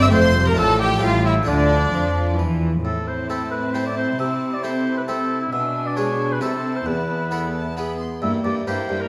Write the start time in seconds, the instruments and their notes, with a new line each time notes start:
Already playing: double bass section G1, cello section G2, viola section C4
0.02 oboe E5, violin section E5 E6
0.09 cello section F2, harpsichord A3 C4 F4, violin section C6
0.13 double bass section F1, harpsichord F2, viola section A3, oboe C5, violin section C5
0.35 viola section G3
0.47 oboe A#4, violin section A#4 A#5
0.53 viola section F3, harpsichord A3 D4 F4
0.57 double bass section A1, harpsichord A2, cello section A2, violin section A4 A5, oboe A4
0.80 oboe G4, violin section G4 G5
0.98 harpsichord A3 C#4 G4
1.02 double bass section A1, harpsichord A2, cello section A2, viola section G3, oboe F4, violin section F4 F5
1.25 oboe E4, violin section E4 E5
1.43 cello section D3, harpsichord A3 D4 F4
1.48 double bass section D2, harpsichord D3, viola section F3, oboe D4, violin section D4 D5
1.93 double bass section F2, cello section F3, harpsichord F3
2.39 double bass section E2, cello section E3, harpsichord E3
2.84 cello section A2, harpsichord A2, viola section C4, violin section E4 A5, oboe A4
3.07 oboe C5
3.29 harpsichord A3 C4 E4, oboe A4
3.51 oboe B4
3.74 harpsichord A3 C4 E4, oboe C5
3.86 oboe D5
3.97 oboe C5
4.18 cello section C3, harpsichord C3, oboe E5
4.53 oboe D5
4.63 harpsichord A3 C4 E4, oboe C5
4.97 oboe B4
5.08 harpsichord A3 C4 E4, oboe A4
5.41 oboe E4
5.52 cello section B2, harpsichord B2, violin section D4 G#5, viola section D4, oboe E5
5.86 oboe D5
5.97 harpsichord G#3 D4 G#4, oboe C#5
6.32 oboe B4
6.41 harpsichord C3 C4 E4 A4, cello section C3, viola section C4, violin section E4 A5, oboe A4
6.76 oboe C5
6.86 harpsichord E2, cello section E2, viola section B3, oboe B4
7.31 harpsichord B3 E4 A4, violin section B5
7.54 violin section A5
7.77 harpsichord B3 E4 G#4, violin section B5
7.99 violin section C6
8.22 harpsichord G2, cello section G2, viola section A#3, violin section E4 G5, oboe E5
8.44 cello section G2, harpsichord G2, viola section A#3, violin section E4 G5, oboe D5
8.66 cello section G2, harpsichord G2 A#3 E4 G4, viola section A#3, violin section E4 G5, oboe C5
8.89 harpsichord G2, cello section G2, viola section A#3, violin section E4 G5
9.01 oboe A#4